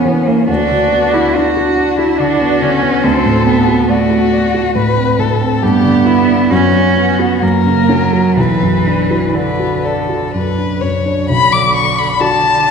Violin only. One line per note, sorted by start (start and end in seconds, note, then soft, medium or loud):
0.00 0.49 C#4 soft
0.49 1.37 F#4 soft
1.35 2.21 D4 soft
2.20 3.06 F#4 soft
3.04 3.89 A4 soft
3.89 4.74 F#4 medium
4.76 5.21 B4 medium
5.19 5.63 A4 soft
5.62 6.07 G4 medium
6.06 6.53 E4 soft
6.51 7.44 F#4 soft
7.42 8.36 A#4 soft
8.37 9.23 B4 soft
9.36 9.86 B4 soft
9.85 10.33 A4 soft
10.33 10.82 B4 soft
10.81 11.28 C#5 soft
11.30 11.53 B5 medium
11.52 11.75 D6 medium
11.75 12.00 C#6 medium
11.98 12.22 B5 medium
12.20 12.71 A5 medium